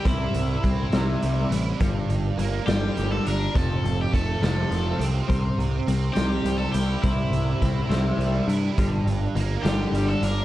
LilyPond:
<<
  \new Staff \with { instrumentName = "Overdriven electric guitar" } { \time 6/8 \key c \mixolydian \tempo 4. = 69 e'2~ e'8 r8 | r4. g'8. a'16 bes'8 | a'8. g'16 a'8 a'4 r8 | r4. g'8. a'16 g'8 |
e'2~ e'8 r8 | r4. g'8. a'16 bes'8 | }
  \new Staff \with { instrumentName = "Distorted electric guitar" } { \clef bass \time 6/8 \key c \mixolydian <c g c' e'>4 c'8 c8 g8 e'8 | g,4 bes8 d8 g8 d'8 | f,4 a8 c8 f8 c'8 | c4 c'8 c8 g8 e'8 |
c4 c'8 c8 g8 e'8 | g,4 bes8 d8 g8 d'8 | }
  \new Staff \with { instrumentName = "Clean electric guitar" } { \clef bass \time 6/8 \key c \mixolydian <c g c'>8 <c g>8 <c g>8 <c g c'>4 <c g>8 | <g, d g>8 <g, d>8 <g, d>8 <g, d g>4 <g, d>8 | <f, c f>8 <f, c>8 <f, c>8 <f, c f>4 <f, c>8 | <c g c'>8 <c g>8 <c g>8 <c g c'>4 <c g>8 |
<c g c'>8 <c g>8 <c g>8 <c g c'>4 <c g>8 | <g, d g>8 <g, d>8 <g, d>8 <g, d g>4 <g, d>8 | }
  \new Staff \with { instrumentName = "Picked electric bass" } { \clef bass \time 6/8 \key c \mixolydian c,8 c,8 c,8 c,8 c,8 a,,8 | g,,8 g,,8 g,,8 g,,8 g,,8 g,,8 | f,,8 f,,8 f,,8 f,,8 f,,8 c,8 | c,8 c,8 c,8 c,8 c,8 c,8 |
c,8 c,8 c,8 c,8 c,8 g,8 | g,,8 g,,8 g,,8 g,,8 g,,8 g,,8 | }
  \new DrumStaff \with { instrumentName = "Drums" } \drummode { \time 6/8 <hh bd>8 hh8 <hh bd>8 <hh sn>8 hh8 hh8 | <hh bd>8 hh8 hh8 <hh sn>8 hh8 hh8 | <hh bd>8 hh8 <hh bd>8 <hh sn>8 hh8 hh8 | <hh bd>8 hh8 hh8 <hh sn>8 hh8 hh8 |
<hh bd>8 hh8 <hh bd>8 <hh sn>8 hh8 hh8 | <hh bd>8 hh8 hh8 <hh sn>8 hh8 hh8 | }
>>